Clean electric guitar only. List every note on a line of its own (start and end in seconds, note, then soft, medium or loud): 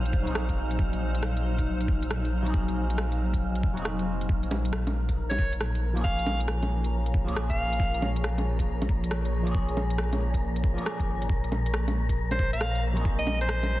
0.00 0.22 F#3 medium
0.00 0.23 C4 medium
0.00 0.25 D#4 medium
0.00 0.26 G#4 medium
0.23 2.41 F#3 medium
0.23 2.42 C4 medium
0.28 2.43 D#4 medium
0.28 2.45 G#4 medium
2.42 3.72 F#3 medium
2.42 3.74 C4 medium
2.47 3.75 D#4 medium
2.47 3.76 G#4 medium
3.73 4.26 F#3 medium
3.73 4.28 C4 medium
3.79 4.29 D#4 medium
3.79 4.31 G#4 medium
5.93 7.23 F3 medium
5.93 7.24 A#3 medium
5.99 7.26 C#4 medium
5.99 7.27 G#4 medium
7.25 9.42 F3 medium
7.25 9.43 A#3 medium
7.30 9.45 C#4 medium
7.30 9.46 G#4 medium
9.43 10.73 F3 medium
9.43 10.74 A#3 medium
9.49 10.76 C#4 medium
9.49 10.77 G#4 medium
10.74 11.27 F3 medium
10.74 11.28 A#3 medium
10.79 11.30 C#4 medium
10.79 11.31 G#4 medium
12.93 13.80 F#3 medium
12.93 13.80 C4 medium
12.99 13.80 D#4 medium
12.99 13.80 G#4 medium